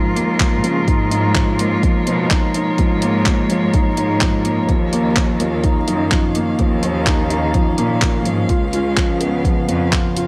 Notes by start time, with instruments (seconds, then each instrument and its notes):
Already playing: cello section G#2, felt piano F3 A#3 D#4, string quartet G#3 F4 A#4
0.16 cello section D#2, felt piano A#3, closed hi-hat
0.40 felt piano F3, kick, clap, closed hi-hat
0.64 cello section C#3, felt piano F3, closed hi-hat
0.88 cello section G#2, felt piano D#4, kick, closed hi-hat
1.11 felt piano D#4, string quartet C#5, closed hi-hat
1.35 felt piano F3, kick, clap, closed hi-hat
1.59 felt piano A#3, closed hi-hat
1.83 felt piano F3, kick, closed hi-hat
2.06 cello section B2, felt piano F3, closed hi-hat
2.31 felt piano D#4, kick, clap, closed hi-hat
2.54 felt piano D#4, closed hi-hat
2.78 cello section G#2, felt piano F3, kick, closed hi-hat
3.02 felt piano A#3, closed hi-hat
3.26 felt piano F3, kick, clap, closed hi-hat
3.50 felt piano F3, closed hi-hat
3.74 felt piano D#4, kick, closed hi-hat
3.97 cello section G#2, felt piano D#4, closed hi-hat
4.21 felt piano F3, kick, clap, closed hi-hat
4.45 felt piano A#3, closed hi-hat
4.69 cello section D#2, string quartet D#3, felt piano F3, kick, closed hi-hat
4.87 string quartet C#4 F5
4.93 felt piano A#3, closed hi-hat
5.16 felt piano F3, kick, clap, closed hi-hat
5.40 felt piano F3, closed hi-hat
5.64 felt piano D#4, kick, closed hi-hat
5.87 cello section F#2, felt piano D#4, closed hi-hat
6.11 felt piano F3, kick, clap, closed hi-hat
6.35 felt piano A#3, closed hi-hat
6.59 cello section D#2, felt piano F3, kick, closed hi-hat
6.83 felt piano F3, closed hi-hat
7.07 felt piano D#4, kick, clap, closed hi-hat
7.30 felt piano D#4, closed hi-hat
7.54 felt piano F3, kick, closed hi-hat
7.78 cello section A#2, felt piano A#3, closed hi-hat
8.02 felt piano F3, kick, clap, closed hi-hat
8.25 cello section G#2, felt piano F3, closed hi-hat
8.49 cello section C#2, string quartet C#3, felt piano F4, kick, closed hi-hat
8.73 felt piano F4, closed hi-hat
8.97 felt piano F3, kick, clap, closed hi-hat
9.21 felt piano B3, closed hi-hat
9.45 felt piano F3, kick, closed hi-hat
9.68 cello section F2, felt piano F3, closed hi-hat
9.92 felt piano F4, kick, clap, closed hi-hat
10.16 felt piano F4, closed hi-hat